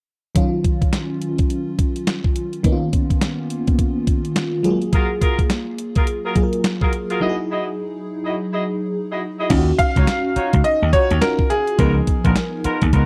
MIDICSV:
0, 0, Header, 1, 7, 480
1, 0, Start_track
1, 0, Key_signature, -6, "minor"
1, 0, Tempo, 571429
1, 302, Time_signature, 4, 2, 24, 8
1, 10968, End_track
2, 0, Start_track
2, 0, Title_t, "Grand piano"
2, 0, Program_c, 0, 0
2, 8219, Note_on_c, 0, 77, 99
2, 8939, Note_on_c, 0, 75, 96
2, 8962, Note_off_c, 0, 77, 0
2, 9163, Note_off_c, 0, 75, 0
2, 9179, Note_on_c, 0, 73, 91
2, 9419, Note_on_c, 0, 70, 84
2, 9428, Note_off_c, 0, 73, 0
2, 9659, Note_on_c, 0, 68, 88
2, 9667, Note_off_c, 0, 70, 0
2, 10968, Note_off_c, 0, 68, 0
2, 10968, End_track
3, 0, Start_track
3, 0, Title_t, "Horn section"
3, 0, Program_c, 1, 61
3, 4139, Note_on_c, 1, 65, 88
3, 4140, Note_on_c, 1, 66, 78
3, 4142, Note_on_c, 1, 68, 76
3, 4143, Note_on_c, 1, 70, 91
3, 4271, Note_off_c, 1, 65, 0
3, 4271, Note_off_c, 1, 66, 0
3, 4272, Note_off_c, 1, 68, 0
3, 4273, Note_off_c, 1, 70, 0
3, 4379, Note_on_c, 1, 65, 77
3, 4380, Note_on_c, 1, 66, 65
3, 4382, Note_on_c, 1, 68, 64
3, 4385, Note_on_c, 1, 70, 80
3, 4511, Note_off_c, 1, 65, 0
3, 4511, Note_off_c, 1, 66, 0
3, 4512, Note_off_c, 1, 68, 0
3, 4514, Note_off_c, 1, 70, 0
3, 5004, Note_on_c, 1, 65, 71
3, 5005, Note_on_c, 1, 66, 62
3, 5007, Note_on_c, 1, 68, 68
3, 5009, Note_on_c, 1, 70, 70
3, 5090, Note_off_c, 1, 65, 0
3, 5090, Note_off_c, 1, 66, 0
3, 5091, Note_off_c, 1, 68, 0
3, 5092, Note_off_c, 1, 70, 0
3, 5244, Note_on_c, 1, 65, 68
3, 5245, Note_on_c, 1, 66, 66
3, 5247, Note_on_c, 1, 68, 69
3, 5248, Note_on_c, 1, 70, 81
3, 5330, Note_off_c, 1, 65, 0
3, 5330, Note_off_c, 1, 66, 0
3, 5331, Note_off_c, 1, 68, 0
3, 5332, Note_off_c, 1, 70, 0
3, 5725, Note_on_c, 1, 65, 74
3, 5727, Note_on_c, 1, 66, 67
3, 5728, Note_on_c, 1, 68, 66
3, 5730, Note_on_c, 1, 70, 81
3, 5810, Note_off_c, 1, 65, 0
3, 5811, Note_off_c, 1, 66, 0
3, 5812, Note_off_c, 1, 68, 0
3, 5813, Note_off_c, 1, 70, 0
3, 5964, Note_on_c, 1, 65, 76
3, 5966, Note_on_c, 1, 66, 66
3, 5968, Note_on_c, 1, 68, 66
3, 5969, Note_on_c, 1, 70, 80
3, 6048, Note_off_c, 1, 66, 0
3, 6050, Note_off_c, 1, 65, 0
3, 6052, Note_off_c, 1, 68, 0
3, 6052, Note_off_c, 1, 70, 0
3, 6056, Note_on_c, 1, 64, 83
3, 6059, Note_on_c, 1, 66, 78
3, 6060, Note_on_c, 1, 68, 80
3, 6062, Note_on_c, 1, 75, 92
3, 6190, Note_off_c, 1, 64, 0
3, 6191, Note_off_c, 1, 66, 0
3, 6191, Note_off_c, 1, 68, 0
3, 6192, Note_off_c, 1, 75, 0
3, 6298, Note_on_c, 1, 64, 74
3, 6299, Note_on_c, 1, 66, 68
3, 6301, Note_on_c, 1, 68, 62
3, 6303, Note_on_c, 1, 75, 78
3, 6430, Note_off_c, 1, 64, 0
3, 6431, Note_off_c, 1, 66, 0
3, 6432, Note_off_c, 1, 68, 0
3, 6433, Note_off_c, 1, 75, 0
3, 6924, Note_on_c, 1, 64, 71
3, 6925, Note_on_c, 1, 66, 64
3, 6928, Note_on_c, 1, 68, 62
3, 6929, Note_on_c, 1, 75, 73
3, 7010, Note_off_c, 1, 64, 0
3, 7010, Note_off_c, 1, 66, 0
3, 7011, Note_off_c, 1, 68, 0
3, 7012, Note_off_c, 1, 75, 0
3, 7164, Note_on_c, 1, 64, 71
3, 7166, Note_on_c, 1, 66, 65
3, 7168, Note_on_c, 1, 68, 67
3, 7170, Note_on_c, 1, 75, 81
3, 7250, Note_off_c, 1, 64, 0
3, 7251, Note_off_c, 1, 66, 0
3, 7252, Note_off_c, 1, 68, 0
3, 7253, Note_off_c, 1, 75, 0
3, 7645, Note_on_c, 1, 64, 69
3, 7647, Note_on_c, 1, 66, 63
3, 7648, Note_on_c, 1, 68, 60
3, 7650, Note_on_c, 1, 75, 71
3, 7730, Note_off_c, 1, 64, 0
3, 7731, Note_off_c, 1, 66, 0
3, 7732, Note_off_c, 1, 68, 0
3, 7733, Note_off_c, 1, 75, 0
3, 7885, Note_on_c, 1, 64, 70
3, 7888, Note_on_c, 1, 66, 67
3, 7889, Note_on_c, 1, 68, 66
3, 7890, Note_on_c, 1, 75, 84
3, 7970, Note_off_c, 1, 64, 0
3, 7971, Note_off_c, 1, 66, 0
3, 7972, Note_off_c, 1, 68, 0
3, 7973, Note_off_c, 1, 75, 0
3, 8366, Note_on_c, 1, 63, 69
3, 8367, Note_on_c, 1, 65, 65
3, 8369, Note_on_c, 1, 66, 65
3, 8371, Note_on_c, 1, 73, 72
3, 8451, Note_off_c, 1, 63, 0
3, 8451, Note_off_c, 1, 65, 0
3, 8452, Note_off_c, 1, 66, 0
3, 8453, Note_off_c, 1, 73, 0
3, 8699, Note_on_c, 1, 63, 70
3, 8700, Note_on_c, 1, 65, 62
3, 8703, Note_on_c, 1, 66, 67
3, 8704, Note_on_c, 1, 73, 76
3, 8831, Note_off_c, 1, 63, 0
3, 8831, Note_off_c, 1, 65, 0
3, 8833, Note_off_c, 1, 66, 0
3, 8833, Note_off_c, 1, 73, 0
3, 9179, Note_on_c, 1, 63, 64
3, 9181, Note_on_c, 1, 65, 65
3, 9183, Note_on_c, 1, 66, 62
3, 9184, Note_on_c, 1, 73, 77
3, 9311, Note_off_c, 1, 63, 0
3, 9312, Note_off_c, 1, 65, 0
3, 9313, Note_off_c, 1, 66, 0
3, 9313, Note_off_c, 1, 73, 0
3, 9899, Note_on_c, 1, 59, 90
3, 9901, Note_on_c, 1, 63, 86
3, 9903, Note_on_c, 1, 65, 79
3, 9905, Note_on_c, 1, 70, 92
3, 10031, Note_off_c, 1, 59, 0
3, 10032, Note_off_c, 1, 63, 0
3, 10033, Note_off_c, 1, 65, 0
3, 10034, Note_off_c, 1, 70, 0
3, 10285, Note_on_c, 1, 59, 70
3, 10286, Note_on_c, 1, 63, 60
3, 10288, Note_on_c, 1, 65, 63
3, 10290, Note_on_c, 1, 70, 75
3, 10370, Note_off_c, 1, 59, 0
3, 10371, Note_off_c, 1, 63, 0
3, 10372, Note_off_c, 1, 65, 0
3, 10372, Note_off_c, 1, 70, 0
3, 10617, Note_on_c, 1, 59, 72
3, 10619, Note_on_c, 1, 63, 64
3, 10620, Note_on_c, 1, 65, 69
3, 10623, Note_on_c, 1, 70, 83
3, 10750, Note_off_c, 1, 59, 0
3, 10751, Note_off_c, 1, 63, 0
3, 10751, Note_off_c, 1, 65, 0
3, 10753, Note_off_c, 1, 70, 0
3, 10859, Note_on_c, 1, 59, 70
3, 10861, Note_on_c, 1, 63, 66
3, 10862, Note_on_c, 1, 65, 65
3, 10864, Note_on_c, 1, 70, 78
3, 10968, Note_off_c, 1, 59, 0
3, 10968, Note_off_c, 1, 63, 0
3, 10968, Note_off_c, 1, 65, 0
3, 10968, Note_off_c, 1, 70, 0
3, 10968, End_track
4, 0, Start_track
4, 0, Title_t, "FM electric piano"
4, 0, Program_c, 2, 5
4, 291, Note_on_c, 2, 51, 68
4, 298, Note_on_c, 2, 54, 62
4, 305, Note_on_c, 2, 61, 63
4, 312, Note_on_c, 2, 65, 79
4, 483, Control_c, 2, 64, 127
4, 2183, Note_off_c, 2, 51, 0
4, 2186, Note_off_c, 2, 54, 0
4, 2190, Note_off_c, 2, 61, 0
4, 2193, Note_off_c, 2, 65, 0
4, 2212, Note_on_c, 2, 51, 73
4, 2218, Note_on_c, 2, 58, 63
4, 2223, Note_on_c, 2, 59, 65
4, 2227, Note_on_c, 2, 61, 66
4, 2231, Control_c, 2, 64, 0
4, 2233, Note_on_c, 2, 63, 60
4, 2287, Note_on_c, 2, 65, 79
4, 2294, Note_off_c, 2, 63, 0
4, 2368, Control_c, 2, 64, 127
4, 3863, Note_off_c, 2, 51, 0
4, 3866, Note_off_c, 2, 58, 0
4, 3868, Note_off_c, 2, 59, 0
4, 3871, Note_off_c, 2, 61, 0
4, 3890, Note_on_c, 2, 54, 66
4, 3894, Note_off_c, 2, 65, 0
4, 3898, Note_on_c, 2, 56, 50
4, 3904, Note_on_c, 2, 65, 65
4, 3911, Note_on_c, 2, 68, 74
4, 3914, Control_c, 2, 64, 0
4, 3952, Note_on_c, 2, 58, 60
4, 3966, Note_off_c, 2, 56, 0
4, 4044, Control_c, 2, 64, 127
4, 5307, Note_off_c, 2, 54, 0
4, 5314, Note_off_c, 2, 65, 0
4, 5317, Note_off_c, 2, 68, 0
4, 5330, Note_off_c, 2, 58, 0
4, 5336, Note_on_c, 2, 54, 57
4, 5340, Note_on_c, 2, 58, 50
4, 5343, Note_on_c, 2, 65, 51
4, 5347, Note_on_c, 2, 68, 48
4, 5402, Note_on_c, 2, 70, 65
4, 5411, Note_off_c, 2, 68, 0
4, 6042, Note_off_c, 2, 54, 0
4, 6053, Note_on_c, 2, 54, 69
4, 6058, Note_on_c, 2, 63, 63
4, 6061, Note_off_c, 2, 58, 0
4, 6062, Note_off_c, 2, 65, 0
4, 6066, Note_on_c, 2, 64, 68
4, 6072, Control_c, 2, 64, 0
4, 6072, Note_on_c, 2, 66, 65
4, 6092, Note_off_c, 2, 70, 0
4, 6127, Note_on_c, 2, 68, 82
4, 6133, Note_off_c, 2, 66, 0
4, 6206, Control_c, 2, 64, 127
4, 7943, Note_off_c, 2, 54, 0
4, 7946, Note_off_c, 2, 63, 0
4, 7950, Note_off_c, 2, 64, 0
4, 7977, Note_on_c, 2, 65, 86
4, 7980, Note_on_c, 2, 61, 81
4, 7981, Note_off_c, 2, 68, 0
4, 7984, Note_on_c, 2, 63, 77
4, 7988, Note_off_c, 2, 65, 0
4, 7988, Note_on_c, 2, 65, 80
4, 7993, Control_c, 2, 64, 0
4, 8042, Note_on_c, 2, 66, 93
4, 8051, Note_off_c, 2, 65, 0
4, 8153, Control_c, 2, 64, 127
4, 8635, Note_off_c, 2, 61, 0
4, 8637, Note_off_c, 2, 63, 0
4, 8666, Note_off_c, 2, 66, 0
4, 9417, Note_on_c, 2, 65, 65
4, 9422, Note_on_c, 2, 61, 61
4, 9425, Note_on_c, 2, 63, 58
4, 9428, Note_on_c, 2, 66, 74
4, 9754, Note_off_c, 2, 65, 0
4, 9757, Note_off_c, 2, 61, 0
4, 9758, Note_off_c, 2, 63, 0
4, 9760, Note_off_c, 2, 66, 0
4, 9898, Note_on_c, 2, 53, 67
4, 9902, Note_on_c, 2, 59, 65
4, 9905, Note_on_c, 2, 63, 68
4, 9909, Note_on_c, 2, 70, 78
4, 9911, Control_c, 2, 64, 0
4, 10080, Control_c, 2, 64, 127
4, 10554, Note_off_c, 2, 53, 0
4, 10556, Note_off_c, 2, 59, 0
4, 10558, Note_off_c, 2, 63, 0
4, 10559, Note_off_c, 2, 70, 0
4, 10968, End_track
5, 0, Start_track
5, 0, Title_t, "Slap bass"
5, 0, Program_c, 3, 36
5, 7984, Note_on_c, 3, 39, 92
5, 8155, Note_off_c, 3, 39, 0
5, 8370, Note_on_c, 3, 37, 78
5, 8436, Note_off_c, 3, 37, 0
5, 8850, Note_on_c, 3, 37, 96
5, 8916, Note_off_c, 3, 37, 0
5, 9091, Note_on_c, 3, 39, 90
5, 9157, Note_off_c, 3, 39, 0
5, 9331, Note_on_c, 3, 39, 87
5, 9397, Note_off_c, 3, 39, 0
5, 9903, Note_on_c, 3, 37, 97
5, 10074, Note_off_c, 3, 37, 0
5, 10288, Note_on_c, 3, 34, 84
5, 10355, Note_off_c, 3, 34, 0
5, 10771, Note_on_c, 3, 39, 89
5, 10837, Note_off_c, 3, 39, 0
5, 10862, Note_on_c, 3, 37, 98
5, 10966, Note_off_c, 3, 37, 0
5, 10968, End_track
6, 0, Start_track
6, 0, Title_t, "Muted slap bass strokes"
6, 8704, Note_on_c, 9, 29, 39
6, 8788, Note_off_c, 9, 29, 0
6, 10625, Note_on_c, 9, 29, 39
6, 10709, Note_off_c, 9, 29, 0
6, 10968, End_track
7, 0, Start_track
7, 0, Title_t, "Drums"
7, 299, Note_on_c, 9, 42, 82
7, 300, Note_on_c, 9, 36, 115
7, 383, Note_off_c, 9, 42, 0
7, 384, Note_off_c, 9, 36, 0
7, 541, Note_on_c, 9, 36, 88
7, 542, Note_on_c, 9, 42, 71
7, 625, Note_off_c, 9, 36, 0
7, 626, Note_off_c, 9, 42, 0
7, 686, Note_on_c, 9, 36, 85
7, 687, Note_on_c, 9, 42, 45
7, 770, Note_off_c, 9, 36, 0
7, 771, Note_off_c, 9, 42, 0
7, 779, Note_on_c, 9, 38, 92
7, 780, Note_on_c, 9, 42, 77
7, 788, Note_on_c, 9, 39, 72
7, 863, Note_off_c, 9, 38, 0
7, 864, Note_off_c, 9, 42, 0
7, 872, Note_off_c, 9, 39, 0
7, 1021, Note_on_c, 9, 42, 73
7, 1105, Note_off_c, 9, 42, 0
7, 1163, Note_on_c, 9, 42, 46
7, 1167, Note_on_c, 9, 36, 88
7, 1247, Note_off_c, 9, 42, 0
7, 1251, Note_off_c, 9, 36, 0
7, 1261, Note_on_c, 9, 42, 66
7, 1345, Note_off_c, 9, 42, 0
7, 1501, Note_on_c, 9, 36, 90
7, 1501, Note_on_c, 9, 42, 65
7, 1585, Note_off_c, 9, 36, 0
7, 1585, Note_off_c, 9, 42, 0
7, 1645, Note_on_c, 9, 42, 54
7, 1729, Note_off_c, 9, 42, 0
7, 1739, Note_on_c, 9, 42, 71
7, 1740, Note_on_c, 9, 38, 98
7, 1749, Note_on_c, 9, 39, 76
7, 1823, Note_off_c, 9, 42, 0
7, 1824, Note_off_c, 9, 38, 0
7, 1833, Note_off_c, 9, 39, 0
7, 1884, Note_on_c, 9, 36, 85
7, 1968, Note_off_c, 9, 36, 0
7, 1980, Note_on_c, 9, 42, 66
7, 2064, Note_off_c, 9, 42, 0
7, 2125, Note_on_c, 9, 42, 46
7, 2209, Note_off_c, 9, 42, 0
7, 2219, Note_on_c, 9, 42, 82
7, 2221, Note_on_c, 9, 36, 124
7, 2303, Note_off_c, 9, 42, 0
7, 2305, Note_off_c, 9, 36, 0
7, 2461, Note_on_c, 9, 42, 74
7, 2462, Note_on_c, 9, 36, 90
7, 2545, Note_off_c, 9, 42, 0
7, 2546, Note_off_c, 9, 36, 0
7, 2606, Note_on_c, 9, 36, 79
7, 2609, Note_on_c, 9, 42, 50
7, 2690, Note_off_c, 9, 36, 0
7, 2693, Note_off_c, 9, 42, 0
7, 2700, Note_on_c, 9, 38, 100
7, 2701, Note_on_c, 9, 42, 78
7, 2709, Note_on_c, 9, 39, 78
7, 2784, Note_off_c, 9, 38, 0
7, 2785, Note_off_c, 9, 42, 0
7, 2793, Note_off_c, 9, 39, 0
7, 2942, Note_on_c, 9, 42, 71
7, 3026, Note_off_c, 9, 42, 0
7, 3086, Note_on_c, 9, 42, 48
7, 3088, Note_on_c, 9, 36, 91
7, 3170, Note_off_c, 9, 42, 0
7, 3172, Note_off_c, 9, 36, 0
7, 3181, Note_on_c, 9, 36, 79
7, 3181, Note_on_c, 9, 42, 64
7, 3265, Note_off_c, 9, 36, 0
7, 3265, Note_off_c, 9, 42, 0
7, 3421, Note_on_c, 9, 36, 89
7, 3421, Note_on_c, 9, 42, 64
7, 3505, Note_off_c, 9, 36, 0
7, 3505, Note_off_c, 9, 42, 0
7, 3568, Note_on_c, 9, 42, 55
7, 3652, Note_off_c, 9, 42, 0
7, 3661, Note_on_c, 9, 38, 93
7, 3661, Note_on_c, 9, 42, 68
7, 3670, Note_on_c, 9, 39, 76
7, 3745, Note_off_c, 9, 38, 0
7, 3745, Note_off_c, 9, 42, 0
7, 3754, Note_off_c, 9, 39, 0
7, 3901, Note_on_c, 9, 42, 68
7, 3985, Note_off_c, 9, 42, 0
7, 4046, Note_on_c, 9, 42, 43
7, 4130, Note_off_c, 9, 42, 0
7, 4139, Note_on_c, 9, 42, 73
7, 4140, Note_on_c, 9, 36, 123
7, 4223, Note_off_c, 9, 42, 0
7, 4224, Note_off_c, 9, 36, 0
7, 4381, Note_on_c, 9, 36, 85
7, 4382, Note_on_c, 9, 42, 68
7, 4465, Note_off_c, 9, 36, 0
7, 4466, Note_off_c, 9, 42, 0
7, 4525, Note_on_c, 9, 36, 79
7, 4527, Note_on_c, 9, 42, 46
7, 4609, Note_off_c, 9, 36, 0
7, 4611, Note_off_c, 9, 42, 0
7, 4618, Note_on_c, 9, 38, 100
7, 4619, Note_on_c, 9, 42, 74
7, 4627, Note_on_c, 9, 39, 76
7, 4702, Note_off_c, 9, 38, 0
7, 4703, Note_off_c, 9, 42, 0
7, 4711, Note_off_c, 9, 39, 0
7, 4859, Note_on_c, 9, 42, 70
7, 4943, Note_off_c, 9, 42, 0
7, 5002, Note_on_c, 9, 42, 46
7, 5006, Note_on_c, 9, 36, 97
7, 5086, Note_off_c, 9, 42, 0
7, 5090, Note_off_c, 9, 36, 0
7, 5099, Note_on_c, 9, 42, 60
7, 5183, Note_off_c, 9, 42, 0
7, 5339, Note_on_c, 9, 36, 90
7, 5339, Note_on_c, 9, 42, 67
7, 5423, Note_off_c, 9, 36, 0
7, 5423, Note_off_c, 9, 42, 0
7, 5484, Note_on_c, 9, 42, 55
7, 5568, Note_off_c, 9, 42, 0
7, 5578, Note_on_c, 9, 38, 95
7, 5578, Note_on_c, 9, 42, 73
7, 5588, Note_on_c, 9, 39, 77
7, 5662, Note_off_c, 9, 38, 0
7, 5662, Note_off_c, 9, 42, 0
7, 5672, Note_off_c, 9, 39, 0
7, 5723, Note_on_c, 9, 36, 88
7, 5807, Note_off_c, 9, 36, 0
7, 5819, Note_on_c, 9, 42, 65
7, 5903, Note_off_c, 9, 42, 0
7, 5965, Note_on_c, 9, 42, 44
7, 6049, Note_off_c, 9, 42, 0
7, 7980, Note_on_c, 9, 42, 77
7, 7981, Note_on_c, 9, 49, 94
7, 7982, Note_on_c, 9, 36, 118
7, 8064, Note_off_c, 9, 42, 0
7, 8065, Note_off_c, 9, 49, 0
7, 8066, Note_off_c, 9, 36, 0
7, 8223, Note_on_c, 9, 36, 96
7, 8223, Note_on_c, 9, 42, 69
7, 8307, Note_off_c, 9, 36, 0
7, 8307, Note_off_c, 9, 42, 0
7, 8367, Note_on_c, 9, 36, 84
7, 8369, Note_on_c, 9, 42, 50
7, 8451, Note_off_c, 9, 36, 0
7, 8453, Note_off_c, 9, 42, 0
7, 8462, Note_on_c, 9, 38, 104
7, 8463, Note_on_c, 9, 42, 75
7, 8471, Note_on_c, 9, 39, 76
7, 8546, Note_off_c, 9, 38, 0
7, 8547, Note_off_c, 9, 42, 0
7, 8555, Note_off_c, 9, 39, 0
7, 8703, Note_on_c, 9, 42, 72
7, 8787, Note_off_c, 9, 42, 0
7, 8846, Note_on_c, 9, 42, 49
7, 8848, Note_on_c, 9, 36, 92
7, 8930, Note_off_c, 9, 42, 0
7, 8932, Note_off_c, 9, 36, 0
7, 8942, Note_on_c, 9, 42, 61
7, 9026, Note_off_c, 9, 42, 0
7, 9181, Note_on_c, 9, 36, 94
7, 9182, Note_on_c, 9, 42, 67
7, 9265, Note_off_c, 9, 36, 0
7, 9266, Note_off_c, 9, 42, 0
7, 9328, Note_on_c, 9, 42, 55
7, 9412, Note_off_c, 9, 42, 0
7, 9421, Note_on_c, 9, 38, 100
7, 9421, Note_on_c, 9, 42, 75
7, 9430, Note_on_c, 9, 39, 78
7, 9505, Note_off_c, 9, 38, 0
7, 9505, Note_off_c, 9, 42, 0
7, 9514, Note_off_c, 9, 39, 0
7, 9565, Note_on_c, 9, 36, 92
7, 9649, Note_off_c, 9, 36, 0
7, 9663, Note_on_c, 9, 42, 67
7, 9747, Note_off_c, 9, 42, 0
7, 9807, Note_on_c, 9, 42, 46
7, 9891, Note_off_c, 9, 42, 0
7, 9901, Note_on_c, 9, 36, 118
7, 9901, Note_on_c, 9, 42, 82
7, 9985, Note_off_c, 9, 36, 0
7, 9985, Note_off_c, 9, 42, 0
7, 10141, Note_on_c, 9, 36, 93
7, 10141, Note_on_c, 9, 42, 75
7, 10225, Note_off_c, 9, 36, 0
7, 10225, Note_off_c, 9, 42, 0
7, 10286, Note_on_c, 9, 36, 79
7, 10287, Note_on_c, 9, 42, 47
7, 10370, Note_off_c, 9, 36, 0
7, 10371, Note_off_c, 9, 42, 0
7, 10379, Note_on_c, 9, 38, 96
7, 10380, Note_on_c, 9, 42, 79
7, 10389, Note_on_c, 9, 39, 78
7, 10463, Note_off_c, 9, 38, 0
7, 10464, Note_off_c, 9, 42, 0
7, 10473, Note_off_c, 9, 39, 0
7, 10621, Note_on_c, 9, 42, 74
7, 10705, Note_off_c, 9, 42, 0
7, 10765, Note_on_c, 9, 42, 50
7, 10768, Note_on_c, 9, 36, 90
7, 10849, Note_off_c, 9, 42, 0
7, 10852, Note_off_c, 9, 36, 0
7, 10860, Note_on_c, 9, 36, 83
7, 10861, Note_on_c, 9, 42, 69
7, 10944, Note_off_c, 9, 36, 0
7, 10945, Note_off_c, 9, 42, 0
7, 10968, End_track
0, 0, End_of_file